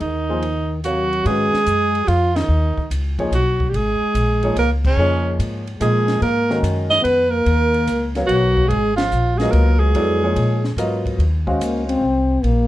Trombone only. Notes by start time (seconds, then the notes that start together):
0.02 D#3
0.84 F#3
1.25 G#3
2.06 F3
2.35 D#3
3.33 F#3
3.70 G3
3.75 G#3
4.58 A#3
4.84 C#3
5.79 G#3
6.21 A#3
6.90 D#4
7.01 B3
7.30 A#3
8.26 F#3
8.68 G#3
8.97 F3
9.38 G#3
9.51 A#3
9.80 G#3
11.61 A#3
11.87 C4
12.43 A#3